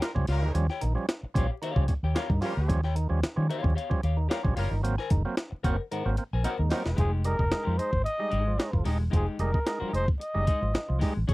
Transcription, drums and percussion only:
0.02 snare loud
0.02 closed hi-hat medium
0.16 kick loud
0.27 snare soft
0.27 open hi-hat medium
0.55 closed hi-hat medium
0.70 snare soft
0.81 closed hi-hat medium
1.09 snare loud
1.09 closed hi-hat medium
1.35 kick loud
1.35 closed hi-hat medium
1.63 closed hi-hat medium
1.76 kick medium
1.88 kick medium
1.88 closed hi-hat medium
2.16 snare loud
2.16 closed hi-hat medium
2.30 kick loud
2.42 snare soft
2.42 open hi-hat medium
2.69 kick loud
2.69 closed hi-hat medium
2.84 snare soft
2.96 closed hi-hat medium
3.23 snare loud
3.23 closed hi-hat medium
3.50 closed hi-hat medium
3.64 kick medium
3.78 closed hi-hat medium
3.91 kick medium
4.03 closed hi-hat medium
4.31 snare loud
4.31 closed hi-hat medium
4.45 kick loud
4.57 snare soft
4.57 open hi-hat medium
4.85 closed hi-hat medium
4.99 snare soft
5.10 kick loud
5.10 closed hi-hat medium
5.37 snare loud
5.37 closed hi-hat medium
5.64 kick loud
5.64 closed hi-hat medium
5.92 closed hi-hat medium
6.17 closed hi-hat medium
6.44 closed hi-hat medium
6.70 snare medium
6.70 open hi-hat medium
6.86 snare medium
6.98 kick loud
6.98 closed hi-hat medium
7.24 closed hi-hat medium
7.39 kick medium
7.52 snare loud
7.52 closed hi-hat medium
7.79 closed hi-hat medium
7.93 kick medium
8.06 closed hi-hat medium
8.32 closed hi-hat soft
8.60 snare loud
8.60 closed hi-hat medium
8.73 kick medium
8.85 snare soft
8.85 open hi-hat medium
9.13 kick loud
9.13 closed hi-hat medium
9.39 closed hi-hat medium
9.54 kick medium
9.66 snare loud
9.66 closed hi-hat medium
9.94 closed hi-hat medium
10.08 kick loud
10.21 closed hi-hat medium
10.47 kick medium
10.47 closed hi-hat medium
10.75 snare loud
10.75 closed hi-hat medium
11.01 kick medium
11.01 snare soft
11.01 open hi-hat medium
11.29 kick loud
11.29 closed hi-hat medium

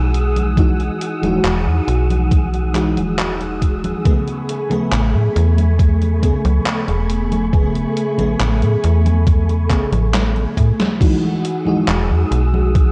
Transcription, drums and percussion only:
0.14 closed hi-hat medium
0.36 closed hi-hat medium
0.36 high conga medium
0.57 kick loud
0.57 closed hi-hat medium
0.57 high conga soft
0.80 closed hi-hat soft
0.80 high conga soft
1.01 closed hi-hat medium
1.23 closed hi-hat soft
1.23 high conga medium
1.45 clap loud
1.45 closed hi-hat medium
1.45 high conga soft
1.67 high conga soft
1.88 closed hi-hat medium
2.10 closed hi-hat soft
2.10 high conga medium
2.31 kick loud
2.31 closed hi-hat medium
2.31 high conga soft
2.54 closed hi-hat soft
2.54 high conga soft
2.75 clap medium
2.75 closed hi-hat medium
2.97 closed hi-hat soft
2.97 high conga medium
3.19 clap loud
3.19 closed hi-hat medium
3.19 high conga soft
3.41 closed hi-hat soft
3.41 high conga soft
3.62 kick medium
3.62 closed hi-hat medium
3.84 closed hi-hat soft
3.84 high conga medium
4.05 kick loud
4.05 closed hi-hat medium
4.05 high conga soft
4.28 closed hi-hat soft
4.28 high conga soft
4.49 closed hi-hat medium
4.71 closed hi-hat medium
4.71 high conga medium
4.92 clap loud
4.92 closed hi-hat medium
4.92 high conga soft
5.15 high conga soft
5.36 closed hi-hat medium
5.58 closed hi-hat soft
5.58 high conga medium
5.79 kick loud
5.79 closed hi-hat medium
5.79 high conga soft
6.01 closed hi-hat soft
6.01 high conga soft
6.23 kick medium
6.23 closed hi-hat medium
6.45 closed hi-hat soft
6.45 high conga medium
6.66 clap loud
6.66 closed hi-hat medium
6.66 high conga soft
6.88 closed hi-hat soft
6.88 high conga soft
7.10 closed hi-hat medium
7.32 closed hi-hat soft
7.32 high conga medium
7.53 kick loud
7.53 closed hi-hat medium
7.53 high conga soft
7.75 closed hi-hat soft
7.75 high conga soft
7.97 closed hi-hat medium
8.19 closed hi-hat medium
8.19 high conga medium
8.40 clap loud
8.40 closed hi-hat medium
8.40 high conga soft
8.62 closed hi-hat soft
8.62 high conga soft
8.84 closed hi-hat medium
9.06 closed hi-hat soft
9.06 high conga medium
9.27 kick loud
9.27 closed hi-hat medium
9.27 high conga soft
9.49 closed hi-hat soft
9.49 high conga soft
9.70 kick medium
9.70 clap medium
9.70 closed hi-hat medium
9.93 closed hi-hat medium
9.93 high conga medium
10.14 snare loud
10.14 clap loud
10.14 closed hi-hat medium
10.14 high conga soft
10.36 closed hi-hat soft
10.36 high conga soft
10.57 kick medium
10.57 closed hi-hat medium
10.80 snare medium
10.80 closed hi-hat medium
10.80 high conga medium
11.01 kick loud
11.01 closed hi-hat medium
11.01 crash loud
11.01 high conga medium
11.23 high conga soft
11.45 closed hi-hat medium
11.67 high conga medium
11.88 clap loud
11.88 closed hi-hat medium
11.88 high conga soft
12.10 high conga soft
12.32 closed hi-hat medium
12.54 high conga medium
12.75 kick loud
12.75 closed hi-hat medium
12.75 high conga soft

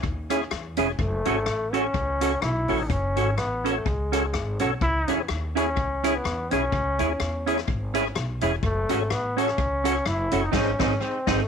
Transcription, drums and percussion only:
0.04 kick loud
0.30 cross-stick medium
0.30 closed hi-hat loud
0.51 cross-stick loud
0.77 closed hi-hat medium
0.99 kick loud
1.25 closed hi-hat medium
1.46 cross-stick loud
1.74 closed hi-hat medium
1.94 kick loud
2.21 closed hi-hat loud
2.42 cross-stick loud
2.68 open hi-hat medium
2.90 kick loud
2.90 hi-hat pedal medium
3.17 closed hi-hat medium
3.38 cross-stick loud
3.66 closed hi-hat medium
3.86 kick loud
4.13 cross-stick medium
4.13 closed hi-hat loud
4.34 cross-stick loud
4.59 closed hi-hat medium
4.81 kick loud
5.08 closed hi-hat medium
5.28 cross-stick loud
5.57 closed hi-hat medium
5.77 kick loud
6.04 cross-stick medium
6.04 closed hi-hat loud
6.25 cross-stick loud
6.51 closed hi-hat medium
6.72 kick loud
6.99 closed hi-hat medium
7.20 cross-stick loud
7.47 closed hi-hat medium
7.58 cross-stick medium
7.68 kick loud
7.95 closed hi-hat medium
8.16 cross-stick loud
8.41 closed hi-hat medium
8.63 kick loud
8.89 closed hi-hat medium
9.10 cross-stick loud
9.38 closed hi-hat medium
9.48 cross-stick medium
9.58 kick loud
9.85 cross-stick medium
9.85 closed hi-hat loud
10.06 cross-stick loud
10.31 closed hi-hat medium
10.53 kick loud
10.53 snare loud
10.53 crash medium
10.79 kick loud
10.79 snare loud
11.27 kick loud
11.27 snare loud

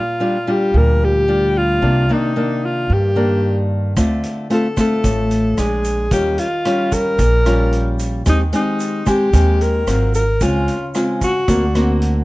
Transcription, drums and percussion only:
3.97 kick medium
3.97 cross-stick medium
3.97 closed hi-hat medium
3.97 shaker medium
4.23 closed hi-hat soft
4.23 shaker soft
4.50 closed hi-hat soft
4.77 kick medium
4.77 cross-stick medium
4.77 closed hi-hat soft
4.77 shaker medium
5.04 kick medium
5.04 closed hi-hat medium
5.04 shaker medium
5.31 closed hi-hat soft
5.31 shaker soft
5.58 cross-stick medium
5.58 closed hi-hat soft
5.58 shaker medium
5.84 closed hi-hat soft
5.84 shaker medium
6.11 kick medium
6.11 closed hi-hat medium
6.11 shaker medium
6.38 closed hi-hat soft
6.38 shaker soft
6.65 cross-stick medium
6.65 closed hi-hat soft
6.92 kick medium
6.92 closed hi-hat soft
6.92 shaker medium
7.19 kick medium
7.19 closed hi-hat medium
7.19 shaker medium
7.46 cross-stick medium
7.46 closed hi-hat soft
7.46 shaker soft
7.72 closed hi-hat soft
7.99 closed hi-hat soft
7.99 shaker medium
8.26 kick medium
8.26 cross-stick medium
8.26 closed hi-hat medium
8.26 shaker medium
8.53 closed hi-hat soft
8.53 shaker soft
8.80 closed hi-hat soft
8.80 shaker medium
9.06 kick medium
9.06 cross-stick medium
9.06 closed hi-hat soft
9.06 shaker medium
9.34 kick medium
9.34 closed hi-hat medium
9.34 shaker medium
9.61 closed hi-hat soft
9.61 shaker soft
9.87 cross-stick medium
9.87 closed hi-hat soft
9.87 shaker medium
10.14 closed hi-hat soft
10.14 shaker medium
10.41 kick medium
10.41 closed hi-hat medium
10.41 shaker medium
10.68 closed hi-hat soft
10.68 shaker soft
10.94 cross-stick medium
10.94 closed hi-hat soft
10.94 shaker medium
11.21 kick medium
11.21 closed hi-hat soft
11.21 shaker medium
11.48 kick medium
11.48 closed hi-hat medium
11.48 shaker medium
11.75 cross-stick medium
11.75 closed hi-hat soft
11.75 shaker soft
12.02 closed hi-hat soft

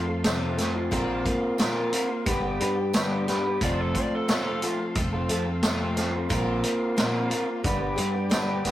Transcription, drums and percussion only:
0.24 snare loud
0.24 closed hi-hat loud
0.24 tambourine medium
0.58 snare soft
0.58 closed hi-hat medium
0.92 kick loud
0.92 closed hi-hat medium
1.26 kick medium
1.26 closed hi-hat medium
1.58 snare loud
1.58 closed hi-hat medium
1.58 tambourine medium
1.93 closed hi-hat medium
2.26 kick loud
2.26 closed hi-hat loud
2.60 closed hi-hat medium
2.93 snare loud
2.93 closed hi-hat medium
2.93 tambourine loud
3.28 snare soft
3.28 closed hi-hat medium
3.61 kick loud
3.61 closed hi-hat medium
3.95 kick medium
3.95 closed hi-hat medium
4.28 snare loud
4.28 closed hi-hat medium
4.28 tambourine loud
4.62 closed hi-hat medium
4.95 kick loud
4.95 closed hi-hat medium
5.29 closed hi-hat medium
5.63 snare loud
5.63 closed hi-hat medium
5.63 tambourine medium
5.97 snare soft
5.97 closed hi-hat medium
6.30 kick loud
6.30 closed hi-hat medium
6.63 closed hi-hat medium
6.98 snare loud
6.98 closed hi-hat loud
6.98 tambourine medium
7.31 closed hi-hat medium
7.64 kick loud
7.64 closed hi-hat loud
7.97 closed hi-hat medium
8.31 snare loud
8.31 closed hi-hat loud
8.31 tambourine medium
8.65 snare soft
8.65 closed hi-hat medium

